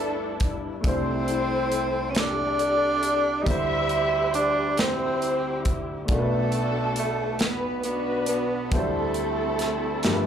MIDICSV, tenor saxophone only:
0, 0, Header, 1, 2, 480
1, 0, Start_track
1, 0, Tempo, 875912
1, 456, Time_signature, 6, 3, 24, 8
1, 5625, End_track
2, 0, Start_track
2, 0, Title_t, "Tenor saxophone"
2, 0, Program_c, 0, 66
2, 0, Note_on_c, 0, 57, 79
2, 266, Note_off_c, 0, 57, 0
2, 476, Note_on_c, 0, 60, 85
2, 1151, Note_on_c, 0, 61, 59
2, 1159, Note_off_c, 0, 60, 0
2, 1195, Note_on_c, 0, 62, 93
2, 1203, Note_off_c, 0, 61, 0
2, 1874, Note_on_c, 0, 63, 62
2, 1882, Note_off_c, 0, 62, 0
2, 1910, Note_on_c, 0, 64, 92
2, 1918, Note_off_c, 0, 63, 0
2, 2379, Note_off_c, 0, 64, 0
2, 2382, Note_on_c, 0, 62, 84
2, 2602, Note_off_c, 0, 62, 0
2, 2627, Note_on_c, 0, 60, 85
2, 3139, Note_off_c, 0, 60, 0
2, 3350, Note_on_c, 0, 57, 80
2, 3801, Note_off_c, 0, 57, 0
2, 3831, Note_on_c, 0, 57, 72
2, 4062, Note_on_c, 0, 59, 74
2, 4071, Note_off_c, 0, 57, 0
2, 4295, Note_off_c, 0, 59, 0
2, 4298, Note_on_c, 0, 59, 70
2, 4521, Note_off_c, 0, 59, 0
2, 4541, Note_on_c, 0, 59, 70
2, 4785, Note_on_c, 0, 57, 77
2, 4793, Note_off_c, 0, 59, 0
2, 5625, Note_off_c, 0, 57, 0
2, 5625, End_track
0, 0, End_of_file